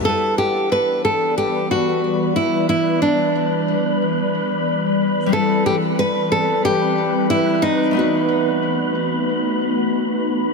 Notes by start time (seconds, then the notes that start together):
0.01 E3 G3 B3 D4 B4 D5 B5
0.05 E4 A4 B4
0.38 G4
0.72 B4
1.05 A4
1.38 G4
1.71 F#4
2.36 E4
2.69 E4
3.02 D4
5.26 G3 C4 D4
5.31 C4 E4 A4 B4
5.66 G4
5.99 B4
6.32 A4
6.65 G4
7.30 E4
7.62 D#4
7.91 A3 B3 D#4 F#4
7.97 F#4 B4